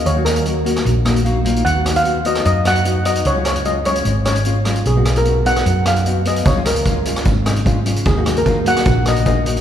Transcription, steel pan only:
X:1
M:4/4
L:1/16
Q:1/4=150
K:C#mix
V:1 name="Steel pan"
c2 A4 z8 z2 | f3 e3 d2 d2 f4 d2 | c2 c2 d2 c4 c4 z2 | G3 A3 f4 e4 d2 |
c2 A4 z8 z2 | G3 A3 f4 d2 d4 |]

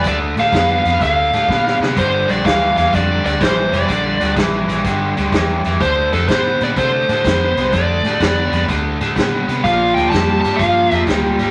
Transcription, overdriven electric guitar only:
X:1
M:4/4
L:1/8
Q:"Swing" 1/4=125
K:Dm
V:1 name="Overdriven electric guitar" clef=bass
[D,A,] [D,A,] [D,=B,] [D,B,] [D,A,] [D,A,] [D,B,] [D,B,] | [G,,D,] [G,,D,] [G,,E,] [G,,E,] [G,,D,] [G,,D,] [G,,E,] [G,,E,] | [G,,D,] [G,,D,] [G,,E,] [G,,E,] [G,,D,] [G,,D,] [G,,E,] [G,,E,] | [D,A,] [D,A,] [D,=B,] [D,B,] [D,A,] [D,A,] [D,B,] [D,B,] |
[D,A,] [D,A,] [D,=B,] [D,B,] [D,A,] [D,A,] [D,B,] [D,B,] | [B,,F,] [B,,F,] [B,,G,] [B,,G,] [B,,F,] [B,,F,] [B,,G,] [B,,G,] |]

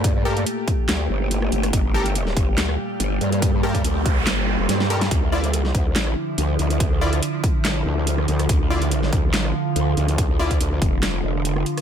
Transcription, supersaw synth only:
X:1
M:4/4
L:1/16
Q:"Swing 16ths" 1/4=142
K:Dm
V:1 name="Supersaw synth"
z2 [GAB] z12 z | z2 [GAB] z12 z | z2 [GAB] z8 z3 [GAB]2 | z2 [EFd] z12 z |
z2 [EFd] z12 z | z2 [EFd] z12 z | z2 [EFd] z12 z |]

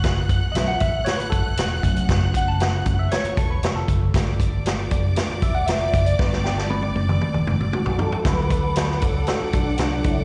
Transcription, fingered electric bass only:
X:1
M:4/4
L:1/16
Q:1/4=117
K:D
V:1 name="Fingered electric bass" clef=bass
F,,,4 B,,,2 A,,,2 z2 G,,,2 E,,,2 =F,,,2 | F,,,6 F,,,2 z2 E,,,2 =F,,,2 ^F,,,2 | G,,,6 F,,,2 z2 E,,,2 =F,,,2 ^F,,,2 | G,,,6 F,,,2 z E,,, F,,, G,,, z B,,, G,,2 |
D,,6 C,,2 z2 B,,,2 =C,,2 ^C,,2 |]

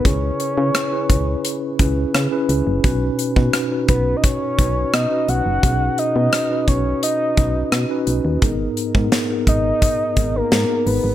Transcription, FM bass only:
X:1
M:4/4
L:1/16
Q:1/4=86
K:B
V:1 name="FM bass" clef=bass
C,,2 z C, z2 C,,2 z2 C,,2 C, z C,, F,,, | B,,,2 z B,, z2 B,,,2 z2 B,,,2 B,, z B,,, F,,, | B,,,2 z B,, z2 B,,,2 z2 B,,,2 B,, z B,,, D,, | G,,,2 z G,, z2 G,,,2 z2 G,,,2 G,, z G,,, G,,, |]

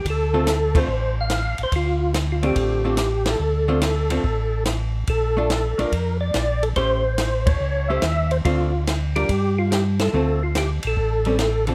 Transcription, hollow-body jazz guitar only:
X:1
M:4/4
L:1/8
Q:"Swing" 1/4=143
K:Dm
V:1 name="Hollow-body jazz guitar"
z [D,A,CF] z [D,A,CF] z4 | z3 [D,A,CF]2 [D,A,CF] z2 | z [D,A,CF] z [D,A,CF] z4 | z [A,DF] z [A,DF] z4 |
[A,^CG^B] z4 [A,CGB] z2 | [D,A,CF] z2 [G,DFB] z4 | [D,A,CF] z4 [G,^B,^C] z [D,B,FA] |]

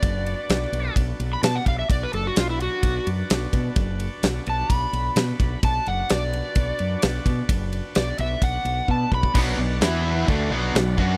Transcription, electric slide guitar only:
X:1
M:4/4
L:1/16
Q:1/4=129
K:Bm
V:1 name="Electric slide guitar"
d8 z3 b a f ^e =e | d B A F ^E =E F4 z6 | z6 a2 b8 | a2 f2 d8 z4 |
z4 d2 e2 f4 a2 b2 | z16 |]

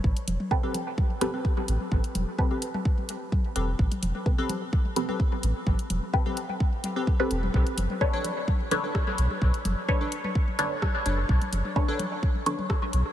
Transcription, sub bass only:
X:1
M:4/4
L:1/8
Q:1/4=128
K:Ador
V:1 name="Sub bass" clef=bass
A,,, E,,, z4 z A,,, | A,,, E,,, z4 z E,,, | A,,, E,,, z4 z A,,, | A,,, E,,, z4 z E,,, |
B,,, F,,, z4 z B,,, | B,,, F,,, z4 z F,,, | B,,, F,,, z4 z B,,, |]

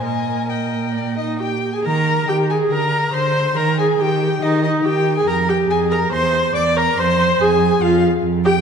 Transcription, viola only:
X:1
M:4/4
L:1/16
Q:1/4=140
K:Eb
V:1 name="Viola"
B8- B2 E2 G3 A | B4 G2 A2 B4 c4 | B2 A2 G4 E2 E2 G3 A | B2 G2 A2 B2 c4 d2 B2 |
c4 A4 F2 z4 G2 |]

